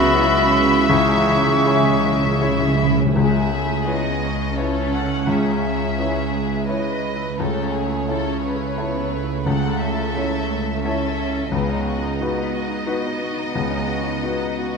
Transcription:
Already playing: C#2 C#3 F#3 B3 E4 F#4 B4 E5 B5
0.12 B3 E4 F#4 B4
0.30 E4
0.38 F#4
0.49 F#4
0.63 E4
0.68 E4
0.87 C#2 C#3 G#3 G#4 C#6
0.98 C#3
1.05 C#3 C#4
1.14 C#3 E3
1.22 C#3
1.27 C#3 E4
1.38 C#3 E4
1.46 C#3 G#4
1.54 C#3
1.63 C#3 E4 G#4 C#5
1.67 C#3 G#5
1.78 C#3
1.84 C#3 C#4
1.92 C#3 C#5
2.03 C#3 G#3
2.10 C#3
2.19 C#3 C#4
2.27 C#3
2.35 C#3
2.41 C#3 E4 G#4 C#5
2.50 C#3
2.59 C#3 G#4
2.67 C#3
2.75 C#3 E4
2.83 C#3
2.91 C#3 E4
2.98 C#3 C#4
3.06 C#3
3.15 C#2 C#3 G#3 G#4 E5
3.40 B3
3.52 A3
3.64 E4
3.86 B3 E4 B4 C#5 D#5
4.12 C#5
4.23 C#4
4.35 B4
4.56 E4 A4 B4 C#5
4.82 B4
4.93 F#5
5.05 E4
5.27 C#2 C#3 G#4 E5
5.52 G#3
5.63 G#4
5.75 E4
5.98 C#4 E4 B4 C#5
6.23 C#5
6.33 G#3
6.45 B4
6.68 E4 B4 C#5 D#5
6.92 B4
7.16 E4
7.38 C#2 C#3 A3 A4 C#5
7.63 C#4
7.74 G#4
7.86 E4
8.08 C#4 E4 A4 C#5
8.32 C#5
8.43 B4
8.55 A4
8.78 B3 E4 A4 C#5
9.00 A4
9.12 A3
9.23 E4
9.46 C#2 C#3 A3 A4 F#5
9.69 C#4
9.81 E5
9.93 E4
10.16 E4 A4 C#5
10.39 C#5
10.62 A4
10.85 C#4 E4 A4 C#5 E5
11.07 A4
11.29 E4
11.51 C#2 C#3 B3 D#5
11.69 D#4
11.76 B3
11.87 F#4
11.99 D#4
12.04 D#4
12.20 B3 D#4 F#4 B4
12.38 D#4
12.43 B4
12.54 F#4
12.65 F#4
12.70 D#4
12.86 B3 D#4 F#4 B4
13.05 D#4
13.09 F#4
13.22 F#4
13.32 D#4
13.38 D#4
13.55 C#2 C#3 B3
13.71 D#4
13.78 B3
13.89 F#4
14.00 D#4
14.06 D#4
14.22 B3 D#4 F#4 B4
14.40 D#4
14.47 B4
14.58 F#4
14.70 F#4

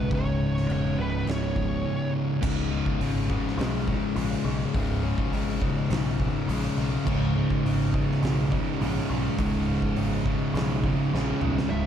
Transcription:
Already playing: C#3 D#3 G#3
0.09 C#1 C#2 G#2 C#3, kick, crash
0.15 C#5
0.57 snare
0.68 E1 C#5, crash
0.97 C#1 C#2 G#2 C#3 B4
1.25 C#1 C#2 G#2 C#3, crash
1.30 C#5, snare
1.56 kick
2.41 C#1 C#2 G#2 C#3 G#3 D#4, kick, crash
2.72 C#2 G#2 C#3
2.86 kick
2.99 G#1 C#2 G#2 C#3, open hi-hat
3.29 C#2 G#2 C#3, kick
3.47 snare
3.58 B1 C#2 G#2 C#3, snare, open hi-hat
3.87 C#2 G#2 C#3, kick
4.16 A#1 C#2 G#2 C#3, open hi-hat
4.44 B1 C#2 G#2 C#3
4.74 C#1 C#2 G#2 C#3, kick, open hi-hat
5.03 C#2 G#2 C#3
5.18 kick
5.31 G#1 C#2 G#2 C#3, open hi-hat
5.60 C#2 G#2 C#3, kick
5.89 B1 C#2 G#2 C#3, snare, open hi-hat
6.20 C#2 G#2 C#3, kick
6.48 A#1 C#2 G#2 C#3, open hi-hat
6.77 B1 C#2 G#2 C#3
7.07 C#1 C#2 G#2 C#3, kick, crash
7.35 C#2 G#2 C#3
7.50 kick
7.64 G#1 C#2 G#2 C#3, open hi-hat
7.94 C#2 G#2 C#3, kick
8.11 snare
8.22 B1 C#2 G#2 C#3, snare, open hi-hat
8.51 C#2 G#2 C#3, kick
8.80 A#1 C#2 G#2 C#3, open hi-hat
9.10 B1 C#2 G#2 C#3
9.38 C#1 C#2 G#2 C#3, kick, open hi-hat
9.68 C#2 G#2 C#3
9.82 kick
9.96 G#1 C#2 G#2 C#3, open hi-hat
10.26 C#2 G#2 C#3, kick
10.54 B1 C#2 G#2 C#3, snare, open hi-hat
10.84 C#2 G#2 C#3, kick
11.13 A#1 C#2 G#2 C#3, snare
11.41 B1 C#2 G#2 C#3, mid tom
11.59 snare
11.70 C#1 C#2 G#2 C#3 D#3 G#3 E5

